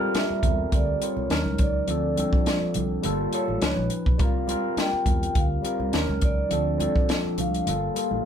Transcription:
Already playing: G3 C4 F4 A4 A#4
0.15 E5, snare, closed hi-hat, high conga
0.30 muted fingered electric bass stroke
0.43 E2, kick, closed hi-hat, muted conga, high conga, low conga
0.72 D2 D5, kick, closed hi-hat, low conga
1.00 G3 C4 F4 A#4, closed hi-hat
1.05 C#5
1.17 C2, high conga
1.29 D#2 F#3 C#4 D#4 A#4, snare, closed hi-hat, muted conga
1.45 C#2, high conga
1.58 C#2 D5, kick, closed hi-hat, muted conga
1.87 D2 F3 C4 D4 A4, closed hi-hat, low conga
2.16 F3 C4 D4 A4, closed hi-hat, high conga
2.33 kick
2.46 snare, closed hi-hat, muted conga, high conga
2.62 muted fingered electric bass stroke
2.74 C2, closed hi-hat, muted conga, high conga, low conga
3.02 G1 G3 A#3 F4 A4, closed hi-hat, muted conga, low conga
3.30 G3 A#3 F4 C#5, closed hi-hat
3.34 A4
3.48 A1, high conga
3.60 C#2 F3 C#4 D#4 B4, snare, closed hi-hat, muted conga
3.76 A#1, high conga
3.90 closed hi-hat, muted conga
4.06 B1, kick
4.18 C2 G3 C4 F4 A#4, kick, closed hi-hat, muted conga, low conga
4.23 F5
4.46 G3 C4 F4 A#4, closed hi-hat, muted conga, high conga
4.77 G5, snare, closed hi-hat, high conga
4.93 muted fingered electric bass stroke
5.06 E2, kick, closed hi-hat, muted conga, high conga, low conga
5.23 closed hi-hat
5.35 D2 F5, kick, closed hi-hat, muted conga, low conga
5.62 G3 C4 F4 A#4, closed hi-hat, muted conga
5.80 C2, high conga
5.91 D#2 F#3 C#4 D#4, snare, closed hi-hat
5.95 A#4
6.08 C#2, high conga
6.21 C#2 D5, kick, closed hi-hat, muted conga
6.49 D2 F3 C4 D4 A4, closed hi-hat, muted conga, low conga
6.78 F3 C4 D4, closed hi-hat, muted conga, high conga
6.82 A4
6.96 kick
7.09 snare, closed hi-hat, muted conga, high conga
7.25 muted fingered electric bass stroke
7.38 C2 F5, closed hi-hat, muted conga, high conga, low conga
7.54 closed hi-hat
7.65 G1 G3 A#3 F4, closed hi-hat, muted conga, low conga
7.69 A4
7.94 G3 A#3 F4 A4, closed hi-hat, muted conga
8.11 A1, high conga

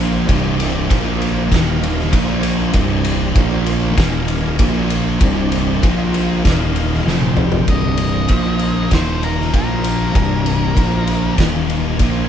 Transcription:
Already playing: A#1 A#2 F3 A#3 F4 C5
0.26 C1 C2 G2 C3 C4 G4 D5, kick, ride
0.60 ride
0.88 A#1 A#2 F3 A#3 F4 C5, kick, ride
1.22 ride
1.49 D#1 D#2 A#2 D#3 D#4 A#4 F5, kick, ride
1.54 snare
1.83 ride
2.00 snare
2.10 A#1 A#2 F3 A#3 F4 C5, kick, ride
2.43 ride
2.72 C1 C2 G2 C3 C4 G4 D5, kick, ride
3.05 ride
3.34 A#1 A#2 F3 A#3 F4 C5, kick, ride
3.66 ride
3.96 D#1 D#2 A#2 D#3 D#4 A#4 F5, kick, snare, ride
4.28 ride
4.59 A#1 A#2 F3 A#3 F4 C5, kick, ride
4.90 ride
5.20 C1 C2 G2 C3 C4 G4 D5, kick, ride
5.52 ride
5.81 A#1 A#2 F3 A#3 F4 C5, kick, ride
6.14 ride
6.44 D#1 D#2 A#2 D#3 D#4 A#4 F5, kick, snare, ride
6.76 ride
6.94 snare
7.05 F1 F2 C3 F3 F4, snare
7.09 C5 G5
7.22 high tom
7.37 mid tom
7.52 floor tom
7.66 C1 C2 G2 C3, kick, ride
7.70 C3 D3 G3 D#5
7.97 ride
8.28 A#1 A#2 F3 A#3 F4 C5, kick, ride
8.59 ride
8.90 D#1 D#2 A#2 D#3 A#3 F4, kick, snare, ride
8.94 C5
9.23 A#4, ride
9.40 snare
9.49 A#2 F3 A#3 F4 C5
9.54 A#1 A#4, kick, ride
9.84 ride
10.11 C2 G2 C3 G3 D4
10.15 C1 C3, kick, ride
10.46 ride
10.74 A#1 A#2 F3 A#3 F4 C5, kick, ride
11.07 ride
11.36 D#1 D#2 A#2 D#3, kick, ride
11.40 D#3 A#3 F4, snare
11.70 ride
11.98 A#1 A#2 F3 A#3, kick, ride
12.03 C5

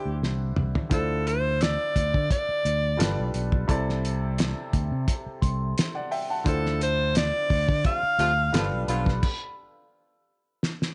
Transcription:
Already playing: D3 D4 E4 G4 C5 C6
0.05 D2
0.22 C2, snare
0.56 C2, mid tom
0.75 floor tom
0.90 D2 D3 D4 E4 F4 A4 C5, kick, closed hi-hat
1.27 C5, closed hi-hat
1.61 D5 E6, snare, closed hi-hat
1.96 D2, kick, closed hi-hat
2.14 D3, kick
2.30 D5, kick, closed hi-hat
2.49 muted fingered electric bass stroke
2.65 D2, closed hi-hat
2.97 G1 G3 D4 F4 A4 B4, closed hi-hat
3.01 snare
3.18 B1
3.34 B1, closed hi-hat
3.52 kick
3.68 C2 C3 C4 E4 A4 D5, kick, closed hi-hat
3.89 snare
4.05 closed hi-hat
4.38 snare, closed hi-hat
4.73 D2, kick, closed hi-hat
4.91 C3
5.08 kick, closed hi-hat
5.26 muted fingered electric bass stroke
5.42 C2 C6, kick, closed hi-hat
5.78 snare, closed hi-hat
5.95 D5 F#5
6.11 E5 G5, open hi-hat
6.30 F#5 A5
6.44 D2 D3 D4 E4 F4 C5, kick, closed hi-hat
6.48 A4
6.66 snare
6.81 C5, closed hi-hat
7.15 D5, snare, closed hi-hat
7.50 D2, kick, open hi-hat
7.69 D3, kick
7.84 C3 F3 A3 F4 F5, kick, closed hi-hat
8.03 muted fingered electric bass stroke
8.19 D2 C3 F3 A3 F4, closed hi-hat
8.52 G1 D3 F3 G3 B3 D4 F4 A4 B4, snare, closed hi-hat
8.72 B1
8.88 B1 D3 F3 B3 F4 B5, closed hi-hat
9.06 kick, snare
9.23 kick, crash
10.63 snare
10.82 snare

